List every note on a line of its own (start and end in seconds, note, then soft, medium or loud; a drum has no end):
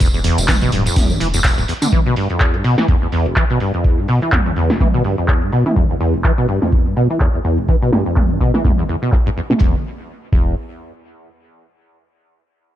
0.00 0.30 E1 loud
0.00 0.08 E2 medium
0.00 kick loud
0.00 closed hi-hat medium
0.00 closed hi-hat loud
0.00 tambourine medium
0.14 0.20 E2 medium
0.14 tambourine soft
0.24 0.40 E2 loud
0.24 closed hi-hat medium
0.24 open hi-hat loud
0.38 0.66 E1 medium
0.38 0.47 E1 medium
0.38 closed hi-hat soft
0.38 tambourine medium
0.48 0.56 E3 loud
0.48 kick loud
0.48 snare loud
0.48 clap loud
0.48 closed hi-hat medium
0.48 mid tom medium
0.48 tambourine medium
0.61 0.70 B2 loud
0.61 closed hi-hat soft
0.61 tambourine soft
0.72 0.89 D1 medium
0.72 0.84 G2 medium
0.72 closed hi-hat medium
0.72 open hi-hat loud
0.86 0.98 F2 medium
0.86 closed hi-hat soft
0.86 tambourine medium
0.96 1.13 E1 medium
0.96 1.11 E2 medium
0.96 kick loud
0.96 snare loud
0.96 closed hi-hat medium
0.96 mid tom medium
0.96 tambourine medium
1.10 1.19 G2 medium
1.10 tambourine soft
1.20 1.50 E1 medium
1.20 1.28 E3 medium
1.20 closed hi-hat medium
1.20 open hi-hat loud
1.34 1.40 E2 loud
1.34 closed hi-hat soft
1.34 tambourine medium
1.44 1.56 E1 loud
1.44 kick loud
1.44 snare loud
1.44 clap loud
1.44 closed hi-hat medium
1.44 tambourine medium
1.58 1.65 D1 loud
1.58 1.64 E2 medium
1.58 closed hi-hat soft
1.58 tambourine soft
1.68 1.73 E2 medium
1.68 closed hi-hat medium
1.68 open hi-hat loud
1.82 1.88 D3 medium
1.82 closed hi-hat medium
1.82 closed hi-hat soft
1.82 mid tom loud
1.82 tambourine medium
1.92 2.00 E3 loud
1.92 kick loud
1.92 closed hi-hat medium
2.06 2.15 B2 loud
2.16 2.28 G2 medium
2.16 open hi-hat loud
2.30 2.42 F2 medium
2.30 closed hi-hat medium
2.40 2.56 E2 medium
2.40 kick loud
2.40 clap loud
2.40 closed hi-hat medium
2.54 2.63 G2 medium
2.54 closed hi-hat soft
2.64 2.76 B2 loud
2.64 open hi-hat loud
2.78 2.87 E3 medium
2.78 snare medium
2.78 closed hi-hat soft
2.88 2.96 E2 loud
2.88 kick loud
2.88 closed hi-hat medium
3.02 3.08 E2 medium
3.12 3.28 E2 loud
3.12 open hi-hat loud
3.26 3.35 E1 medium
3.26 closed hi-hat soft
3.36 3.44 E3 loud
3.36 kick loud
3.36 clap loud
3.36 closed hi-hat medium
3.50 3.59 B2 loud
3.50 closed hi-hat soft
3.60 3.72 G2 medium
3.60 open hi-hat loud
3.74 3.86 F2 medium
3.74 closed hi-hat medium
3.84 4.00 E2 medium
3.84 kick loud
3.84 closed hi-hat medium
3.98 4.07 G2 medium
4.08 4.20 B2 loud
4.08 open hi-hat loud
4.22 4.31 E3 medium
4.22 closed hi-hat medium
4.32 4.40 E2 loud
4.32 kick loud
4.32 clap loud
4.32 closed hi-hat medium
4.32 mid tom medium
4.46 4.52 E2 medium
4.46 closed hi-hat soft
4.56 4.72 E2 loud
4.56 open hi-hat medium
4.70 4.79 E1 medium
4.70 snare medium
4.70 closed hi-hat medium
4.80 4.88 E3 loud
4.80 kick loud
4.80 closed hi-hat medium
4.80 mid tom medium
4.94 5.03 B2 loud
5.04 5.16 G2 medium
5.04 open hi-hat loud
5.18 5.30 F2 medium
5.18 closed hi-hat soft
5.28 5.44 E2 medium
5.28 kick loud
5.28 clap loud
5.28 closed hi-hat medium
5.42 5.51 G2 medium
5.42 closed hi-hat soft
5.52 5.64 B2 loud
5.52 open hi-hat loud
5.66 5.75 E3 medium
5.66 closed hi-hat medium
5.66 mid tom medium
5.76 5.84 E2 loud
5.76 kick loud
5.76 closed hi-hat medium
5.90 5.96 E2 medium
6.00 6.16 E2 loud
6.00 open hi-hat loud
6.14 6.23 E1 medium
6.14 closed hi-hat medium
6.24 6.32 E3 loud
6.24 kick loud
6.24 clap loud
6.24 closed hi-hat medium
6.38 6.47 B2 loud
6.38 closed hi-hat soft
6.48 6.60 G2 medium
6.48 open hi-hat loud
6.62 6.74 F2 medium
6.62 snare medium
6.62 closed hi-hat medium
6.72 6.88 E2 medium
6.72 kick loud
6.72 closed hi-hat medium
6.86 6.95 G2 medium
6.96 7.08 B2 loud
6.96 open hi-hat loud
7.10 7.19 E3 medium
7.10 closed hi-hat medium
7.20 7.28 E2 loud
7.20 kick loud
7.20 clap loud
7.20 closed hi-hat medium
7.34 7.40 E2 medium
7.34 closed hi-hat soft
7.44 7.60 E2 loud
7.44 open hi-hat loud
7.58 7.67 E1 medium
7.58 closed hi-hat medium
7.69 7.76 E3 medium
7.69 kick loud
7.69 closed hi-hat medium
7.82 7.91 B2 loud
7.82 closed hi-hat soft
7.92 8.04 G2 medium
7.92 snare medium
7.92 open hi-hat loud
8.06 8.18 F2 medium
8.06 closed hi-hat medium
8.16 8.32 E2 medium
8.16 kick loud
8.16 clap loud
8.16 closed hi-hat medium
8.16 mid tom medium
8.30 8.39 G2 medium
8.30 closed hi-hat soft
8.40 8.52 B2 loud
8.40 kick medium
8.40 open hi-hat loud
8.54 8.63 E3 medium
8.54 snare medium
8.54 open hi-hat medium
8.64 8.72 E2 loud
8.64 kick loud
8.64 mid tom medium
8.78 8.84 E2 medium
8.78 closed hi-hat soft
8.88 8.96 E2 medium
8.88 open hi-hat loud
9.02 9.11 B2 medium
9.12 kick loud
9.12 clap loud
9.26 9.30 G2 loud
9.36 9.41 E2 medium
9.36 open hi-hat loud
9.50 9.54 B2 medium
9.50 snare medium
9.50 closed hi-hat medium
9.50 mid tom medium
9.61 9.75 E1 medium
9.61 9.75 E2 medium
9.61 kick loud
10.32 10.55 E1 loud
10.32 10.55 E2 loud
10.32 kick loud